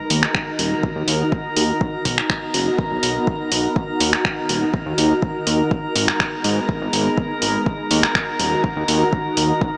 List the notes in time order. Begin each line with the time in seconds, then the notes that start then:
Already playing: D#3 D#4 F#4 A#4 A#5
0.10 D#2, open hi-hat
0.23 finger snap
0.35 finger snap, kick
0.59 D#1, open hi-hat
0.83 kick
0.96 D#2
1.08 D#2, open hi-hat
1.32 kick
1.57 D#2, open hi-hat
1.81 B3, kick
2.05 B1, kick, open hi-hat
2.18 finger snap
2.30 finger snap, kick
2.54 F#1, open hi-hat
2.78 kick
2.91 B1
3.03 B1, open hi-hat
3.27 kick
3.52 B1, open hi-hat
3.76 D#3 A#4, kick
4.00 D#2, open hi-hat
4.13 finger snap
4.25 finger snap, kick
4.49 D#1, open hi-hat
4.74 kick
4.86 D#2
4.98 D#2, open hi-hat
5.22 kick
5.47 D#2, open hi-hat
5.71 G#3 B3, kick
5.96 G#1, open hi-hat
6.08 finger snap
6.20 finger snap, kick
6.44 G#2, open hi-hat
6.69 kick
6.81 G#1
6.93 G#1, open hi-hat
7.18 kick
7.42 G#1, open hi-hat
7.66 D#3 D#4 F#4, kick
7.91 D#2, open hi-hat
8.03 finger snap
8.15 finger snap, kick
8.39 D#1, open hi-hat
8.64 kick
8.76 D#2
8.88 D#2, open hi-hat
9.13 kick
9.37 D#2, open hi-hat
9.61 B3, kick